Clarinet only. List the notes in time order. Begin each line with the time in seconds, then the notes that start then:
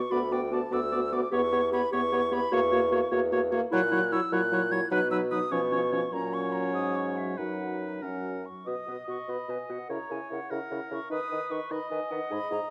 0.10 F#4
0.31 F#4
0.51 F#4
0.71 F#4
0.91 F#4
1.11 F#4
1.31 G4
1.51 G4
1.72 G4
1.92 G4
2.12 G4
2.32 G4
2.52 F#4
2.72 F#4
2.92 F#4
3.12 F#4
3.32 F#4
3.51 F#4
3.71 E4
3.91 E4
4.12 E4
4.32 E4
4.52 E4
4.72 E4
4.92 D#4
5.11 D#4
5.31 D#4
5.52 C#4
5.71 C#4
5.92 C#4
6.13 C#4
7.37 D#4
8.03 C#4
8.66 B4
8.87 B4
9.08 B4
9.28 B4
9.49 B4
9.69 B4
9.89 A#4
10.09 A#4
10.31 A#4
10.50 A#4
10.71 A#4
10.91 A#4
11.11 B4
11.30 B4
11.51 B4
11.71 B4
11.91 B4
12.11 B4
12.31 G#4
12.50 G#4